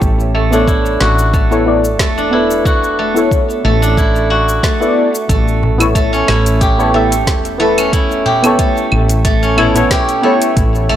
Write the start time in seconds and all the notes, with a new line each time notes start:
Already playing: A3 B3 C#4 E4 G4 A4 C#5
0.02 A1, kick, cabasa
0.20 cabasa
0.35 A3
0.51 B3 D4 E4 A4, cabasa
0.55 C#5
0.68 E4, kick, cabasa
0.86 cabasa
1.00 A1 F#4, snare
1.19 cabasa
1.34 A3, kick, cabasa
1.51 B3 E4 A4 C#5, cabasa
1.66 B3 E4 A4 D5
1.85 cabasa
1.99 E1 A3, kick, snare, cabasa
2.18 D4, cabasa
2.31 B3 E4 A4 B4
2.51 cabasa
2.65 F#4, kick, cabasa
2.84 cabasa
2.99 A3
3.14 B3 E4 A4 C#5, cabasa
3.31 kick, cabasa
3.50 cabasa
3.65 A1 A3
3.82 D4, cabasa
3.97 E4, kick, cabasa
4.16 cabasa
4.30 F#4
4.49 cabasa
4.63 A3, kick, snare, cabasa
4.80 B3 E4 A4 D5, cabasa
5.15 cabasa
5.29 A1 A3, kick, closed hi-hat, cabasa
5.48 cabasa
5.63 darbuka tek, darbuka dum
5.78 B3 E4 A4 C#5, closed hi-hat, darbuka tek, cabasa, claves
5.95 A3, kick, closed hi-hat, cabasa
6.13 C#4, darbuka ka, cabasa
6.28 A1 E4, snare, claves
6.46 closed hi-hat, darbuka tek, cabasa
6.61 G4, kick, closed hi-hat, cabasa
6.78 B3 E4 A4 C#5, cabasa
6.94 A3 B3 E4 A4 E5
7.12 closed hi-hat, cabasa
7.27 E1, kick, snare, closed hi-hat, cabasa
7.45 closed hi-hat, cabasa
7.58 A3 B3 E4 A4
7.62 B4
7.78 C#4, closed hi-hat, darbuka ka, cabasa, claves
7.93 E4, kick, closed hi-hat, cabasa
8.11 cabasa
8.26 G4, darbuka dum
8.42 B3 E4 A4 C#5, closed hi-hat, darbuka tek, cabasa, claves
8.59 A3, kick, closed hi-hat, cabasa
8.77 darbuka ka, cabasa
8.92 A1, claves
9.09 closed hi-hat, darbuka ka, darbuka tek, cabasa
9.25 A3, kick, closed hi-hat, cabasa
9.43 C#4, cabasa
9.57 B3 E4 A4 C#5, darbuka dum, claves
9.75 B3 E4 A4 C#5, closed hi-hat, darbuka ka, darbuka dum, cabasa
9.91 G4, kick, snare, closed hi-hat, cabasa
10.09 closed hi-hat, cabasa
10.22 A3 B3 E4 A4 C#5
10.42 closed hi-hat, darbuka ka, cabasa
10.57 A1, kick, closed hi-hat, cabasa
10.75 cabasa
10.89 A3, darbuka tek, darbuka dum